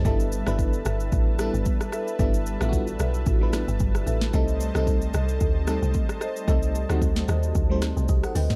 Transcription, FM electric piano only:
0.05 0.38 G3 medium
0.05 0.38 B3 medium
0.05 0.38 D4 medium
0.05 0.38 E4 medium
0.05 0.39 A4 loud
0.46 1.21 G3 medium
0.46 1.21 B3 medium
0.46 1.21 D4 medium
0.46 1.22 E4 medium
0.46 1.22 B4 loud
1.39 2.04 G3 medium
1.39 2.05 B3 medium
1.39 2.05 D4 medium
1.39 2.05 E4 medium
1.39 2.05 A4 loud
2.19 2.52 G3 medium
2.19 2.52 B3 medium
2.19 2.52 D4 medium
2.19 2.53 E4 medium
2.19 2.53 A4 loud
2.61 3.24 G3 medium
2.61 3.24 B3 medium
2.61 3.24 D4 medium
2.61 3.25 E4 medium
2.61 2.68 F4 medium
2.69 3.28 F#4 loud
3.41 4.16 G3 medium
3.41 4.16 B3 medium
3.41 4.16 D4 medium
3.41 4.16 E4 medium
3.41 4.17 B4 loud
4.33 4.66 G3 medium
4.33 4.66 A3 medium
4.33 4.67 C4 medium
4.33 4.67 D#4 medium
4.33 4.67 A4 loud
4.75 5.50 G3 medium
4.75 5.50 A3 medium
4.75 5.50 C4 medium
4.75 5.50 D#4 medium
4.75 5.51 A4 loud
5.67 6.33 G3 medium
5.67 6.33 A3 medium
5.67 6.33 C4 medium
5.67 6.34 D#4 medium
5.67 6.34 A4 loud
6.48 6.80 G3 medium
6.48 6.81 A3 medium
6.48 6.81 C4 medium
6.48 6.81 D#4 medium
6.48 6.81 A4 loud
6.89 7.53 G3 loud
6.89 7.53 A3 medium
6.89 7.53 C4 medium
6.89 7.53 D#4 medium
6.89 7.54 F#4 loud
7.70 8.44 G3 medium
7.70 8.44 A3 medium
7.70 8.45 C4 medium
7.70 8.45 D#4 medium
7.70 7.83 C5 loud
8.09 8.23 G4 medium
8.09 8.23 D#5 medium
8.24 8.36 A4 medium
8.24 8.35 F#5 medium
8.36 8.50 B4 medium
8.36 8.50 G5 medium
8.51 8.56 G4 medium
8.51 8.56 D#5 medium

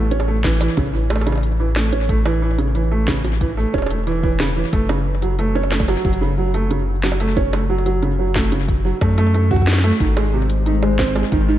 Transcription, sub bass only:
0.00 0.69 A1 loud
0.77 3.66 A1 loud
3.74 4.65 E1 loud
4.73 5.97 F#1 loud
6.05 8.93 F#1 loud
9.01 9.92 F#2 loud
10.00 11.24 G#1 loud
11.32 11.59 G#1 loud

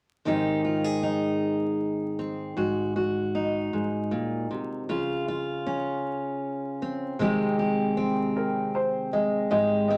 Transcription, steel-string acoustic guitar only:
0.25 2.53 G#2 medium
0.25 4.88 D#3 soft
0.25 2.18 C4 soft
0.25 1.03 D#4 soft
0.25 0.64 G4 soft
0.65 0.84 F4 soft
0.84 2.57 G#4 soft
1.03 2.53 D#4 soft
2.19 2.60 C4 soft
2.57 3.72 G#2 soft
2.57 2.95 F#4 soft
2.96 4.84 F#4 soft
3.35 4.84 D#4 soft
3.73 4.12 G#2 soft
4.11 4.50 A#2 soft
4.51 4.89 C3 soft
4.89 7.15 C#3 medium
4.89 5.27 F4 medium
5.28 7.20 F4 soft
5.66 7.15 C#4 soft
6.82 7.21 C4 soft
7.19 9.46 C3 medium
7.19 9.97 D#3 soft
7.19 9.12 G#3 soft
7.19 7.96 C4 soft
7.19 7.58 G4 soft
7.59 9.47 G4 soft
7.97 9.89 C4 soft
9.13 9.90 G#3 soft
9.51 9.97 G#2 medium
9.51 9.97 G4 medium
9.90 9.97 C4 soft

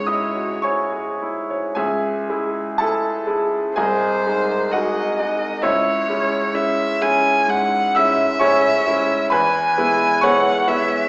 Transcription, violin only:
0.00 0.65 C#5 soft
3.77 4.73 C5 medium
4.72 5.17 D#5 soft
5.19 5.65 D#5 soft
5.63 6.57 C#5 soft
6.55 7.04 E5 medium
7.02 7.51 G#5 medium
7.49 7.98 F#5 medium
7.97 9.32 E5 medium
9.33 10.25 G#5 medium
10.24 10.70 F#5 medium
10.68 11.09 E5 medium

